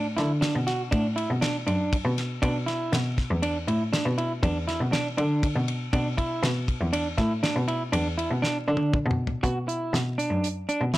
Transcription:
Already playing: A2
0.17 D3 E4, snare, ride
0.41 D4, snare, ride
0.56 B2
0.67 F#4, snare, ride
0.91 A2 D4, kick, ride
1.16 E4, ride
1.30 B2
1.41 D4, snare, ride
1.67 F#2 D4, ride
1.93 kick, ride
2.05 B2
2.18 snare, ride
2.42 B2 D4, kick, ride
2.66 E4, snare, ride
2.93 B2, snare, ride
3.18 kick, snare, ride
3.31 E2
3.42 D4, ride
3.68 A2 E4, ride
3.93 D4, snare, ride
4.06 B2
4.18 E4, ride
4.43 E2 D4, kick, ride
4.68 E4, snare, ride
4.81 B2
4.92 D4, snare, ride
5.17 D3 D4, ride
5.43 kick, ride
5.56 B2
5.68 ride
5.93 B2 D4, kick, ride
6.18 E4, kick, ride
6.43 B2, snare, ride
6.68 kick, ride
6.81 E2
6.93 D4, ride
7.17 A2 E4, kick, snare, ride
7.43 D4, snare, ride
7.56 B2
7.68 E4, ride
7.92 E2 D4, ride
8.18 E4, ride
8.31 B2
8.42 D4, snare
8.68 D3 D4
8.77 high tom
8.94 kick, mid tom
9.06 B2
9.11 mid tom
9.27 floor tom
9.43 B2 F#4, kick, closed hi-hat
9.68 E4, closed hi-hat
9.93 B2, snare, closed hi-hat
10.18 D4, closed hi-hat
10.31 F#2
10.44 closed hi-hat
10.69 D4, closed hi-hat
10.81 B2
10.94 E4, snare, closed hi-hat

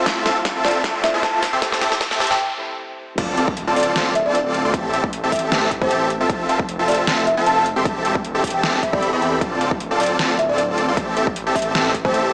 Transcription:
Already playing: riser
0.04 F1 A3 C4 E4 F4 A4 C5 E5 A5, kick, snare, closed hi-hat
0.25 F1 C4 F4 A4 E5 A5, snare, closed hi-hat
0.45 kick, snare, closed hi-hat
0.55 F1 C4 F4 A4 E5 A5
0.65 D5, snare, closed hi-hat
0.68 closed hi-hat
0.71 closed hi-hat
0.84 F1 C4 F4 A4 E5 A5, kick, snare, closed hi-hat
1.03 A3 C4 E4 F4 C5 E5, snare, closed hi-hat
1.14 F1 C4 F4 A4 E5 A5
1.23 A5, kick, snare, closed hi-hat
1.33 A5
1.43 snare, open hi-hat
1.53 E1 C4 G4 A4 E5 C6
1.60 E1 A3 C4 E4 G4 A4 E5, kick, snare, closed hi-hat
1.64 C5
1.72 snare
1.81 E1 C4 G4 A4 E5 A5, snare, closed hi-hat
1.92 snare
2.01 kick, snare, closed hi-hat
2.11 E1 C4 G4 A4 E5 A5, snare
2.20 snare, closed hi-hat
2.24 closed hi-hat
2.27 G5, snare, closed hi-hat
2.58 A3 C4 E4 G4 C5
3.18 D1 C4 F4 A4 D5 A5, kick, closed hi-hat, crash, impact
3.37 D1 C4 F4 A4 D5 A5, closed hi-hat
3.48 kick
3.57 closed hi-hat
3.67 D1 C4 F4 A4 D5 A5
3.76 D5, closed hi-hat, open hi-hat
3.83 closed hi-hat
3.96 D1 C4 F4 A4 D5 A5, snare, closed hi-hat
4.15 E5, closed hi-hat
4.26 D1 C4 F4 A4 D5 A5
4.35 D5, closed hi-hat
4.54 closed hi-hat
4.65 D2 C4 F4 A4 D5 C6
4.74 A1 C4 G4, kick, closed hi-hat
4.93 A1 C4 G4 A4 E5 A5, closed hi-hat
5.04 kick
5.13 closed hi-hat
5.23 A1 C4 G4 A4 E5 A5
5.32 E5, kick, closed hi-hat, open hi-hat
5.39 closed hi-hat
5.52 A1 C4 G4 A4 E5 A5, snare, closed hi-hat
5.71 kick, closed hi-hat
5.82 A1 C4 G4 A4 C5 E5 A5, kick
5.91 closed hi-hat
6.10 closed hi-hat
6.20 F1 C4 F4 A4 E5 A5
6.29 F1, kick, closed hi-hat
6.49 F1 C4 F4 A4 E5 A5, closed hi-hat
6.59 kick
6.69 closed hi-hat
6.79 F1 C4 F4 A4 E5 A5
6.88 D5, closed hi-hat, open hi-hat
6.94 closed hi-hat
7.07 F1 C4 F4 A4 E5 A5, snare, closed hi-hat
7.27 E5, closed hi-hat
7.37 F1 C4 F4 A4 E5 A5
7.46 A5, closed hi-hat
7.57 A5
7.66 closed hi-hat
7.76 E1 C4 G4 A4 E5 C6
7.85 E1 A4 E5 A5, kick, closed hi-hat
8.05 E1 C4 G4 A4 E5 A5, closed hi-hat
8.15 kick
8.25 closed hi-hat
8.35 E1 C4 G4 A4 E5 A5
8.44 kick, closed hi-hat, open hi-hat
8.50 G5, closed hi-hat
8.63 E1 C4 G4 A4 E5 A5, snare, closed hi-hat
8.83 E1 E5, kick, closed hi-hat
8.93 D5, kick
9.03 closed hi-hat
9.13 E2 C4 G4 A4 E5 B5
9.22 closed hi-hat
9.41 D1 A4 D5 A5, kick, closed hi-hat
9.61 D1 C4 F4 A4 D5 A5, closed hi-hat
9.71 kick
9.80 closed hi-hat
9.90 D1 C4 F4 A4 D5 A5
10.00 D5, closed hi-hat, open hi-hat
10.06 closed hi-hat
10.19 D1 C4 F4 A4 D5 A5, snare, closed hi-hat
10.39 E5, closed hi-hat
10.49 D1 C4 F4 A4 D5 A5
10.58 D5, closed hi-hat
10.78 closed hi-hat
10.88 D2 C4 F4 A4 D5 C6
10.97 A1 C4 G4 A4 E5 A5, kick, closed hi-hat
11.17 A1 C4 G4 A4 E5 A5, closed hi-hat
11.27 kick
11.36 closed hi-hat
11.47 A1 C4 G4 A4 E5 A5
11.55 E5, kick, closed hi-hat, open hi-hat
11.62 closed hi-hat
11.75 A1 C4 G4 A4 E5 A5, snare, closed hi-hat
11.94 kick, closed hi-hat
12.05 A1 C4 G4 A4 C5 E5 A5, kick
12.14 closed hi-hat

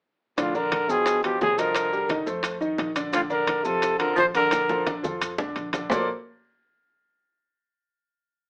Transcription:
0.37 A#1 A2 D3 D4 F4 D5, high bongo, high conga, high timbale, maracas
0.55 D3 D4 A#4 D5, high conga, maracas
0.72 high bongo, high conga, high timbale, maracas
0.89 G1 B2 F3 F4 G#4 G5, high bongo, high conga, maracas
1.06 high bongo, high conga, high timbale, maracas
1.23 B2 F3 F4 G4, high bongo, high conga, high timbale, maracas
1.41 C2 B2 G#4, high bongo, low bongo, high conga, low timbale, maracas
1.58 D3 F3 F4 A#4 D#5, high bongo, high timbale, maracas
1.75 high bongo, high conga, high timbale, maracas
1.93 G3 G4 A#4, high conga, maracas
2.09 D#3 D#4 D#5, high bongo, high conga, high timbale, maracas
2.26 F2 A3 A4 C5, high bongo, high conga, maracas
2.43 high bongo, high conga, high timbale, maracas
2.61 D#3 D#4 D#5, high bongo, high conga, maracas
2.78 A#1, high bongo, low bongo, high conga, high timbale, maracas
2.96 D3 D4 D5, high bongo, high conga, high timbale, maracas
3.12 A2 D3 D4 F4 D5, high bongo, high conga, high timbale, maracas
3.30 D3 D4 A#4 D5, high conga, maracas
3.47 high bongo, high conga, high timbale, maracas
3.64 F2 C3 F3 F4 A4, high bongo, high conga, maracas
3.82 high bongo, high conga, high timbale, maracas
3.98 D3 F3 F4 A4 A#4, high bongo, high conga, high timbale, maracas
4.16 A#1 F3 C5, high bongo, low bongo, high conga, maracas
4.35 D3 D4 A#4 D5, high bongo, high conga, high timbale, maracas
4.51 high bongo, high conga, high timbale, maracas
4.69 F3 F4 A4, high bongo, high conga, maracas
4.87 D3 D4 D5, low bongo, high conga, high timbale, maracas
5.03 F2 F3 F4 A4, low bongo, high conga, maracas
5.21 low conga, high timbale, maracas
5.38 D3 D4 D5, low bongo, low conga, maracas
5.56 A#1, low conga, high timbale, maracas
5.73 D3 D4 D5, low bongo, low conga, high timbale, maracas
5.90 A#1 A#3 F4 A4 A#4 C5 D5, low bongo, low conga, low timbale, maracas

